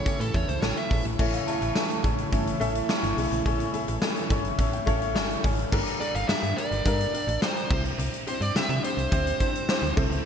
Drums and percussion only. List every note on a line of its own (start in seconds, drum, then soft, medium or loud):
0.06 kick medium
0.06 closed hi-hat medium
0.21 closed hi-hat medium
0.34 kick medium
0.34 closed hi-hat medium
0.49 closed hi-hat soft
0.62 snare loud
0.62 tambourine medium
0.77 closed hi-hat soft
0.91 kick loud
0.91 open hi-hat medium
1.05 closed hi-hat soft
1.19 kick loud
1.19 crash medium
1.33 closed hi-hat medium
1.48 closed hi-hat medium
1.62 closed hi-hat medium
1.76 snare loud
1.76 tambourine medium
1.90 closed hi-hat medium
2.04 kick loud
2.04 closed hi-hat medium
2.18 closed hi-hat soft
2.33 kick medium
2.33 closed hi-hat medium
2.47 closed hi-hat medium
2.61 closed hi-hat medium
2.75 closed hi-hat soft
2.89 snare loud
2.89 tambourine medium
3.04 closed hi-hat soft
3.18 open hi-hat medium
3.32 closed hi-hat soft
3.46 kick loud
3.46 closed hi-hat medium
3.60 closed hi-hat medium
3.74 closed hi-hat medium
3.88 closed hi-hat medium
4.02 snare loud
4.02 tambourine medium
4.16 closed hi-hat medium
4.30 kick loud
4.30 closed hi-hat medium
4.44 closed hi-hat soft
4.58 kick medium
4.58 closed hi-hat medium
4.73 closed hi-hat medium
4.87 kick medium
4.87 closed hi-hat medium
5.02 closed hi-hat medium
5.16 snare loud
5.16 tambourine medium
5.30 closed hi-hat soft
5.44 kick loud
5.44 open hi-hat medium
5.59 closed hi-hat soft
5.72 kick loud
5.72 crash loud
5.87 closed hi-hat medium
6.01 closed hi-hat medium
6.15 closed hi-hat medium
6.29 snare loud
6.29 tambourine medium
6.43 closed hi-hat medium
6.58 closed hi-hat medium
6.72 closed hi-hat soft
6.86 kick medium
6.86 closed hi-hat medium
7.01 closed hi-hat medium
7.14 closed hi-hat medium
7.28 closed hi-hat soft
7.42 snare loud
7.42 tambourine medium
7.57 closed hi-hat soft
7.71 kick loud
7.71 crash medium
7.85 closed hi-hat soft
7.99 closed hi-hat medium
8.14 closed hi-hat medium
8.27 closed hi-hat medium
8.42 closed hi-hat medium
8.56 snare loud
8.56 tambourine medium
8.70 closed hi-hat medium
8.84 closed hi-hat medium
8.98 closed hi-hat soft
9.12 kick loud
9.12 closed hi-hat medium
9.27 closed hi-hat medium
9.40 kick medium
9.40 closed hi-hat medium
9.55 closed hi-hat medium
9.69 snare loud
9.69 tambourine medium
9.84 closed hi-hat soft
9.97 kick loud
9.97 crash medium
10.12 closed hi-hat soft